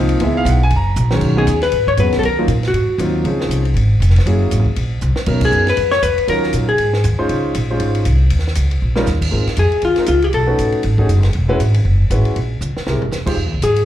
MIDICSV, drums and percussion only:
0, 0, Header, 1, 2, 480
1, 0, Start_track
1, 0, Tempo, 252951
1, 397, Time_signature, 4, 2, 24, 8
1, 26282, End_track
2, 0, Start_track
2, 0, Title_t, "Drums"
2, 167, Note_on_c, 9, 51, 63
2, 357, Note_off_c, 9, 51, 0
2, 377, Note_on_c, 9, 51, 81
2, 566, Note_off_c, 9, 51, 0
2, 875, Note_on_c, 9, 44, 66
2, 875, Note_on_c, 9, 51, 90
2, 1065, Note_off_c, 9, 44, 0
2, 1065, Note_off_c, 9, 51, 0
2, 1336, Note_on_c, 9, 51, 70
2, 1526, Note_off_c, 9, 51, 0
2, 1821, Note_on_c, 9, 44, 66
2, 2011, Note_off_c, 9, 44, 0
2, 2100, Note_on_c, 9, 38, 94
2, 2290, Note_off_c, 9, 38, 0
2, 2298, Note_on_c, 9, 49, 81
2, 2309, Note_on_c, 9, 36, 79
2, 2487, Note_off_c, 9, 49, 0
2, 2499, Note_off_c, 9, 36, 0
2, 2786, Note_on_c, 9, 44, 66
2, 2786, Note_on_c, 9, 51, 73
2, 2976, Note_off_c, 9, 44, 0
2, 2976, Note_off_c, 9, 51, 0
2, 3065, Note_on_c, 9, 51, 48
2, 3069, Note_on_c, 9, 38, 37
2, 3255, Note_off_c, 9, 51, 0
2, 3257, Note_on_c, 9, 51, 68
2, 3259, Note_off_c, 9, 38, 0
2, 3447, Note_off_c, 9, 51, 0
2, 3554, Note_on_c, 9, 36, 54
2, 3744, Note_off_c, 9, 36, 0
2, 3745, Note_on_c, 9, 44, 55
2, 3745, Note_on_c, 9, 51, 74
2, 3934, Note_off_c, 9, 44, 0
2, 3934, Note_off_c, 9, 51, 0
2, 4033, Note_on_c, 9, 51, 57
2, 4037, Note_on_c, 9, 38, 49
2, 4223, Note_off_c, 9, 51, 0
2, 4227, Note_off_c, 9, 38, 0
2, 4236, Note_on_c, 9, 51, 64
2, 4426, Note_off_c, 9, 51, 0
2, 4705, Note_on_c, 9, 44, 60
2, 4705, Note_on_c, 9, 51, 76
2, 4895, Note_off_c, 9, 44, 0
2, 4895, Note_off_c, 9, 51, 0
2, 4992, Note_on_c, 9, 51, 46
2, 4996, Note_on_c, 9, 38, 45
2, 5182, Note_off_c, 9, 51, 0
2, 5186, Note_off_c, 9, 38, 0
2, 5199, Note_on_c, 9, 51, 72
2, 5389, Note_off_c, 9, 51, 0
2, 5678, Note_on_c, 9, 44, 57
2, 5678, Note_on_c, 9, 51, 73
2, 5867, Note_off_c, 9, 44, 0
2, 5867, Note_off_c, 9, 51, 0
2, 6163, Note_on_c, 9, 51, 66
2, 6353, Note_off_c, 9, 51, 0
2, 6459, Note_on_c, 9, 38, 58
2, 6649, Note_off_c, 9, 38, 0
2, 6658, Note_on_c, 9, 44, 62
2, 6658, Note_on_c, 9, 51, 74
2, 6848, Note_off_c, 9, 44, 0
2, 6848, Note_off_c, 9, 51, 0
2, 6930, Note_on_c, 9, 51, 47
2, 7119, Note_off_c, 9, 51, 0
2, 7144, Note_on_c, 9, 51, 73
2, 7333, Note_off_c, 9, 51, 0
2, 7626, Note_on_c, 9, 44, 63
2, 7626, Note_on_c, 9, 51, 73
2, 7780, Note_on_c, 9, 38, 35
2, 7816, Note_off_c, 9, 44, 0
2, 7816, Note_off_c, 9, 51, 0
2, 7897, Note_on_c, 9, 51, 57
2, 7941, Note_off_c, 9, 38, 0
2, 7941, Note_on_c, 9, 38, 54
2, 8087, Note_off_c, 9, 51, 0
2, 8093, Note_on_c, 9, 51, 72
2, 8131, Note_off_c, 9, 38, 0
2, 8283, Note_off_c, 9, 51, 0
2, 8560, Note_on_c, 9, 44, 64
2, 8560, Note_on_c, 9, 51, 78
2, 8750, Note_off_c, 9, 44, 0
2, 8750, Note_off_c, 9, 51, 0
2, 8842, Note_on_c, 9, 36, 59
2, 9032, Note_off_c, 9, 36, 0
2, 9038, Note_on_c, 9, 51, 74
2, 9227, Note_off_c, 9, 51, 0
2, 9507, Note_on_c, 9, 44, 57
2, 9697, Note_off_c, 9, 44, 0
2, 9788, Note_on_c, 9, 38, 78
2, 9978, Note_off_c, 9, 38, 0
2, 9986, Note_on_c, 9, 49, 79
2, 9998, Note_on_c, 9, 36, 81
2, 10176, Note_off_c, 9, 49, 0
2, 10187, Note_off_c, 9, 36, 0
2, 10266, Note_on_c, 9, 49, 87
2, 10278, Note_on_c, 9, 36, 98
2, 10455, Note_off_c, 9, 49, 0
2, 10468, Note_off_c, 9, 36, 0
2, 10469, Note_on_c, 9, 44, 60
2, 10659, Note_off_c, 9, 44, 0
2, 10754, Note_on_c, 9, 51, 48
2, 10757, Note_on_c, 9, 38, 46
2, 10943, Note_off_c, 9, 51, 0
2, 10945, Note_on_c, 9, 51, 77
2, 10947, Note_off_c, 9, 38, 0
2, 11135, Note_off_c, 9, 51, 0
2, 11229, Note_on_c, 9, 38, 56
2, 11419, Note_off_c, 9, 38, 0
2, 11436, Note_on_c, 9, 44, 63
2, 11436, Note_on_c, 9, 51, 74
2, 11625, Note_off_c, 9, 44, 0
2, 11625, Note_off_c, 9, 51, 0
2, 11724, Note_on_c, 9, 51, 55
2, 11913, Note_off_c, 9, 51, 0
2, 11920, Note_on_c, 9, 51, 74
2, 12110, Note_off_c, 9, 51, 0
2, 12203, Note_on_c, 9, 38, 37
2, 12385, Note_on_c, 9, 44, 70
2, 12385, Note_on_c, 9, 51, 74
2, 12392, Note_off_c, 9, 38, 0
2, 12575, Note_off_c, 9, 44, 0
2, 12575, Note_off_c, 9, 51, 0
2, 12866, Note_on_c, 9, 51, 68
2, 13056, Note_off_c, 9, 51, 0
2, 13159, Note_on_c, 9, 38, 64
2, 13349, Note_off_c, 9, 38, 0
2, 13355, Note_on_c, 9, 44, 72
2, 13355, Note_on_c, 9, 51, 71
2, 13545, Note_off_c, 9, 44, 0
2, 13545, Note_off_c, 9, 51, 0
2, 13837, Note_on_c, 9, 51, 70
2, 14027, Note_off_c, 9, 51, 0
2, 14318, Note_on_c, 9, 44, 51
2, 14318, Note_on_c, 9, 51, 81
2, 14508, Note_off_c, 9, 44, 0
2, 14508, Note_off_c, 9, 51, 0
2, 14795, Note_on_c, 9, 51, 70
2, 14984, Note_off_c, 9, 51, 0
2, 15079, Note_on_c, 9, 51, 58
2, 15269, Note_off_c, 9, 51, 0
2, 15277, Note_on_c, 9, 44, 61
2, 15277, Note_on_c, 9, 51, 78
2, 15467, Note_off_c, 9, 44, 0
2, 15467, Note_off_c, 9, 51, 0
2, 15754, Note_on_c, 9, 51, 77
2, 15921, Note_on_c, 9, 38, 35
2, 15944, Note_off_c, 9, 51, 0
2, 16081, Note_off_c, 9, 38, 0
2, 16081, Note_on_c, 9, 38, 49
2, 16229, Note_on_c, 9, 44, 69
2, 16229, Note_on_c, 9, 51, 84
2, 16270, Note_off_c, 9, 38, 0
2, 16419, Note_off_c, 9, 44, 0
2, 16419, Note_off_c, 9, 51, 0
2, 16529, Note_on_c, 9, 51, 50
2, 16719, Note_off_c, 9, 51, 0
2, 16994, Note_on_c, 9, 38, 70
2, 17184, Note_off_c, 9, 38, 0
2, 17199, Note_on_c, 9, 44, 67
2, 17203, Note_on_c, 9, 38, 59
2, 17389, Note_off_c, 9, 44, 0
2, 17392, Note_off_c, 9, 38, 0
2, 17487, Note_on_c, 9, 36, 79
2, 17492, Note_on_c, 9, 49, 99
2, 17677, Note_off_c, 9, 36, 0
2, 17682, Note_off_c, 9, 49, 0
2, 17976, Note_on_c, 9, 51, 50
2, 17980, Note_on_c, 9, 38, 41
2, 18151, Note_off_c, 9, 51, 0
2, 18151, Note_on_c, 9, 44, 54
2, 18151, Note_on_c, 9, 51, 76
2, 18170, Note_off_c, 9, 38, 0
2, 18341, Note_off_c, 9, 44, 0
2, 18341, Note_off_c, 9, 51, 0
2, 18439, Note_on_c, 9, 51, 43
2, 18627, Note_off_c, 9, 51, 0
2, 18627, Note_on_c, 9, 51, 65
2, 18817, Note_off_c, 9, 51, 0
2, 18897, Note_on_c, 9, 51, 50
2, 18901, Note_on_c, 9, 38, 36
2, 19087, Note_off_c, 9, 51, 0
2, 19091, Note_off_c, 9, 38, 0
2, 19097, Note_on_c, 9, 44, 55
2, 19097, Note_on_c, 9, 51, 68
2, 19287, Note_off_c, 9, 44, 0
2, 19287, Note_off_c, 9, 51, 0
2, 19399, Note_on_c, 9, 51, 53
2, 19589, Note_off_c, 9, 51, 0
2, 19597, Note_on_c, 9, 51, 64
2, 19787, Note_off_c, 9, 51, 0
2, 20086, Note_on_c, 9, 44, 58
2, 20086, Note_on_c, 9, 51, 79
2, 20276, Note_off_c, 9, 44, 0
2, 20276, Note_off_c, 9, 51, 0
2, 20348, Note_on_c, 9, 51, 46
2, 20538, Note_off_c, 9, 51, 0
2, 20550, Note_on_c, 9, 51, 70
2, 20740, Note_off_c, 9, 51, 0
2, 20840, Note_on_c, 9, 36, 64
2, 21030, Note_off_c, 9, 36, 0
2, 21045, Note_on_c, 9, 44, 52
2, 21045, Note_on_c, 9, 51, 68
2, 21235, Note_off_c, 9, 44, 0
2, 21235, Note_off_c, 9, 51, 0
2, 21311, Note_on_c, 9, 51, 54
2, 21315, Note_on_c, 9, 38, 47
2, 21501, Note_off_c, 9, 51, 0
2, 21501, Note_on_c, 9, 51, 61
2, 21505, Note_off_c, 9, 38, 0
2, 21690, Note_off_c, 9, 51, 0
2, 22009, Note_on_c, 9, 44, 57
2, 22009, Note_on_c, 9, 51, 76
2, 22199, Note_off_c, 9, 44, 0
2, 22199, Note_off_c, 9, 51, 0
2, 22285, Note_on_c, 9, 51, 68
2, 22475, Note_off_c, 9, 51, 0
2, 22970, Note_on_c, 9, 44, 61
2, 22970, Note_on_c, 9, 51, 69
2, 23160, Note_off_c, 9, 44, 0
2, 23160, Note_off_c, 9, 51, 0
2, 23248, Note_on_c, 9, 51, 48
2, 23437, Note_off_c, 9, 51, 0
2, 23452, Note_on_c, 9, 51, 60
2, 23642, Note_off_c, 9, 51, 0
2, 23932, Note_on_c, 9, 44, 64
2, 24122, Note_off_c, 9, 44, 0
2, 24225, Note_on_c, 9, 38, 58
2, 24414, Note_off_c, 9, 38, 0
2, 24417, Note_on_c, 9, 38, 76
2, 24607, Note_off_c, 9, 38, 0
2, 24701, Note_on_c, 9, 43, 74
2, 24891, Note_off_c, 9, 43, 0
2, 24900, Note_on_c, 9, 44, 52
2, 24904, Note_on_c, 9, 38, 60
2, 25090, Note_off_c, 9, 44, 0
2, 25094, Note_off_c, 9, 38, 0
2, 25175, Note_on_c, 9, 36, 85
2, 25183, Note_on_c, 9, 49, 89
2, 25364, Note_off_c, 9, 36, 0
2, 25373, Note_off_c, 9, 49, 0
2, 25845, Note_on_c, 9, 44, 61
2, 25845, Note_on_c, 9, 51, 77
2, 26035, Note_off_c, 9, 44, 0
2, 26035, Note_off_c, 9, 51, 0
2, 26118, Note_on_c, 9, 51, 76
2, 26282, Note_off_c, 9, 51, 0
2, 26282, End_track
0, 0, End_of_file